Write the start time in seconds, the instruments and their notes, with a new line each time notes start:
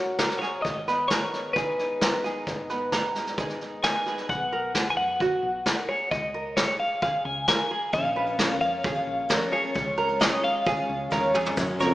Already playing: fretless electric bass F#1, steel-string acoustic guitar F#2 F#3 C#4 F#4 A#4, ukulele F#4, clean electric guitar F#5
0.18 steel-string acoustic guitar C#3 C#4, ukulele A#4, kick, snare
0.30 snare
0.39 ukulele G#4, steel-string acoustic guitar A#4, clean electric guitar C#5, snare
0.62 fretless electric bass G#1, steel-string acoustic guitar G#2, clean electric guitar D#5, kick, snare
0.87 steel-string acoustic guitar B3, ukulele B4, snare
1.08 ukulele A#4, clean electric guitar C#5, kick, snare
1.33 steel-string acoustic guitar G#3, snare
1.53 steel-string acoustic guitar D#4, ukulele G#4, clean electric guitar B4, kick, snare
1.79 steel-string acoustic guitar D#4, snare
2.01 steel-string acoustic guitar D#3 B3, ukulele A#4, kick, snare
2.24 steel-string acoustic guitar D#4, ukulele G#4, snare
2.47 fretless electric bass G#1, steel-string acoustic guitar G#2, kick, snare
2.70 steel-string acoustic guitar B3, ukulele B4, snare
2.92 ukulele A#5, kick, snare
3.15 steel-string acoustic guitar G#3, snare
3.27 snare
3.38 steel-string acoustic guitar D#4, ukulele G#4, kick, snare
3.49 snare
3.61 steel-string acoustic guitar D#4, snare
3.83 steel-string acoustic guitar D#3 B3, ukulele A#4, clean electric guitar G#5, kick, snare
4.06 ukulele G#4, steel-string acoustic guitar B4, snare
4.18 snare
4.29 fretless electric bass B1, clean electric guitar F#5, kick
4.52 ukulele A#4
4.75 ukulele G#4, kick, snare
4.90 clean electric guitar G#5
4.97 fretless electric bass F#2, clean electric guitar F#5
5.20 ukulele F#4, kick
5.43 fretless electric bass B1
5.66 ukulele A#4, kick, snare
5.89 ukulele G#4, clean electric guitar C#5
6.11 fretless electric bass C#2, clean electric guitar D#5, kick
6.34 ukulele A#4
6.57 ukulele G#4, clean electric guitar C#5, kick, snare
6.79 fretless electric bass G#1, clean electric guitar F5
7.02 ukulele G#4, clean electric guitar F5, kick
7.25 fretless electric bass C#2, clean electric guitar G#5
7.48 ukulele A#4, clean electric guitar G#5, kick, snare
7.71 ukulele G#4
7.92 fretless electric bass A#1, twelve-string acoustic guitar A#2 F3 A#3 C#4 F4 C#5, clean electric guitar F5, kick
8.04 twelve-string acoustic guitar A#3 C#4 F4 C#5
8.16 ukulele B4
8.27 twelve-string acoustic guitar A#3 C#4 F4 C#5
8.39 twelve-string acoustic guitar A#2 F3 A#3 C#4 F4 C#5, ukulele A#4, kick, snare
8.50 twelve-string acoustic guitar A#3 C#4 F4 C#5
8.61 fretless electric bass F2, twelve-string acoustic guitar A#3 C#4 F4 C#5, clean electric guitar F5
8.83 twelve-string acoustic guitar A#3 C#4 F4 C#5, ukulele G#4, kick
8.95 twelve-string acoustic guitar A#3 C#4 F4 C#5
9.07 fretless electric bass A#1
9.29 twelve-string acoustic guitar A#2 F3 A#3 C#4 F4 C#5, ukulele A#4, kick, snare
9.52 twelve-string acoustic guitar A#3 C#4 F4 C#5, ukulele G#4, clean electric guitar C#5
9.64 twelve-string acoustic guitar A#3 C#4 F4 C#5
9.74 fretless electric bass C#2, twelve-string acoustic guitar C#3 F3 G#3 C#4 F4 C#5, kick
9.98 ukulele A#4
10.09 twelve-string acoustic guitar G#3 C#4 F4 C#5
10.19 twelve-string acoustic guitar C#3 F3 G#3 C#4 F4 C#5, ukulele G#4, clean electric guitar D#5, kick, snare
10.43 fretless electric bass G#1, twelve-string acoustic guitar G#3 C#4 F4 C#5, clean electric guitar F5
10.65 twelve-string acoustic guitar G#3 C#4 F4 C#5, ukulele G#4, kick
10.76 twelve-string acoustic guitar G#3 C#4 F4 C#5
10.89 fretless electric bass C#2
11.10 fretless electric bass D#2, twelve-string acoustic guitar C#3 F3 G#3 C#4 F4 C#5, ukulele A#4, kick, snare
11.34 fretless electric bass F2, twelve-string acoustic guitar G#3 C#4 F4 C#5, ukulele G#4, mid tom
11.45 twelve-string acoustic guitar G#3 C#4 F4 C#5, floor tom
11.56 upright piano F#1 F#2 F#3 C#4 A#4 C#5, twelve-string acoustic guitar F#2 C#3 F#3 A#3 C#4 A#4, fretless electric bass F#2, kick, snare, shaker
11.79 fretless electric bass C#2, trombone F2, ukulele A#4, clean electric guitar C#5, snare, shaker
11.90 twelve-string acoustic guitar A#4